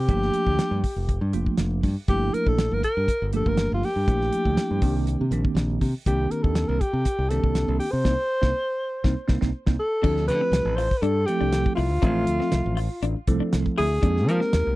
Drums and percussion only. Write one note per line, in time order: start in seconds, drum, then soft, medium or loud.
0.09 kick medium
0.09 closed hi-hat medium
0.22 snare soft
0.34 closed hi-hat medium
0.47 kick medium
0.59 snare loud
0.59 closed hi-hat medium
0.84 kick medium
0.84 open hi-hat medium
1.09 kick medium
1.09 closed hi-hat medium
1.33 closed hi-hat medium
1.46 kick medium
1.58 snare medium
1.58 closed hi-hat medium
1.83 kick medium
1.83 open hi-hat medium
2.08 kick medium
2.08 closed hi-hat medium
2.34 closed hi-hat medium
2.47 kick medium
2.58 snare loud
2.58 closed hi-hat medium
2.83 kick medium
2.83 closed hi-hat medium
3.08 kick medium
3.08 closed hi-hat medium
3.33 closed hi-hat medium
3.46 kick medium
3.57 snare loud
3.57 closed hi-hat medium
3.83 open hi-hat medium
4.08 kick medium
4.08 closed hi-hat medium
4.21 snare soft
4.33 closed hi-hat medium
4.45 kick medium
4.57 snare loud
4.57 closed hi-hat medium
4.82 kick medium
4.82 open hi-hat medium
5.07 closed hi-hat medium
5.32 closed hi-hat medium
5.45 kick medium
5.57 snare loud
5.57 closed hi-hat medium
5.81 kick medium
5.81 open hi-hat medium
6.06 kick medium
6.06 closed hi-hat medium
6.31 closed hi-hat medium
6.44 kick medium
6.55 snare loud
6.55 closed hi-hat medium
6.81 kick medium
6.81 closed hi-hat soft
7.05 kick medium
7.05 closed hi-hat medium
7.31 snare soft
7.31 closed hi-hat medium
7.44 kick medium
7.55 snare medium
7.55 closed hi-hat medium
7.80 open hi-hat medium
8.05 kick medium
8.05 snare medium
8.42 kick medium
8.42 snare medium
9.04 kick medium
9.04 snare medium
9.28 kick medium
9.28 snare medium
9.42 kick medium
9.42 snare medium
9.66 kick medium
9.66 snare medium
10.04 kick medium
10.04 crash medium
10.17 snare soft
10.28 closed hi-hat medium
10.53 snare loud
10.53 closed hi-hat medium
10.78 snare soft
10.78 open hi-hat medium
10.91 kick medium
11.03 closed hi-hat medium
11.28 closed hi-hat medium
11.53 snare medium
11.53 closed hi-hat medium
11.66 kick medium
11.77 open hi-hat medium
12.02 kick medium
12.02 closed hi-hat medium
12.27 closed hi-hat medium
12.41 snare soft
12.52 snare loud
12.52 closed hi-hat medium
12.77 open hi-hat medium
13.03 closed hi-hat medium
13.27 kick medium
13.27 closed hi-hat medium
13.53 snare loud
13.53 closed hi-hat medium
13.66 kick medium
13.78 open hi-hat medium
14.03 kick loud
14.03 closed hi-hat medium
14.17 snare soft
14.29 closed hi-hat medium
14.41 snare soft
14.53 snare loud
14.53 closed hi-hat medium